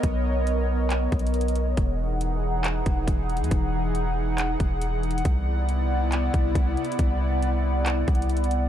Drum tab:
HH |x-----x-----x--xxxxxxx--|x-----x-----x--x--x--xxx|x-----x-----x--x--x--xxx|x-----x-----x--x--x--xxx|
CP |------------x-----------|------------x-----------|------------x-----------|------------x-----------|
BD |o--------------o--------|o--------------o--o-----|o--------------o--------|o--------------o--o-----|

HH |x-----x-----x--xxxxxxx--|
CP |------------x-----------|
BD |o--------------o--------|